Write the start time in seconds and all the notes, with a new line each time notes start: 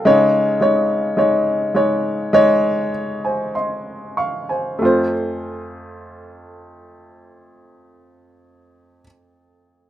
Already playing: A4 F5
0.05 C#3 G#3 D#4 C#5
0.61 G#3 D#4 C#5
1.17 G#3 D#4 C#5
1.75 G#3 D#4 C#5
2.33 G#3 D#4 C#5
3.25 C5 G#5
3.55 D#5 C6
4.17 F5 C#6
4.49 C5 G#5
4.79 F2 A3 F4
4.85 C5